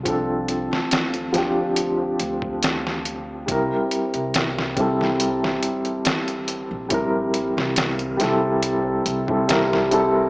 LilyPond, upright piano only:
\new Staff \with { instrumentName = "Upright piano" } { \time 4/4 \key c \mixolydian \tempo 4 = 70 <f c' d' a'>4. <f c' d' g'>2~ <f c' d' g'>8 | <g c' e' bes'>4. <g c' e' a'>2~ <g c' e' a'>8 | <g c' e' bes'>4. <g c' e' a'>4~ <g c' e' a'>16 <g c' e' a'>16 <g c' e' bes'>8 <g c' e' a'>8 | }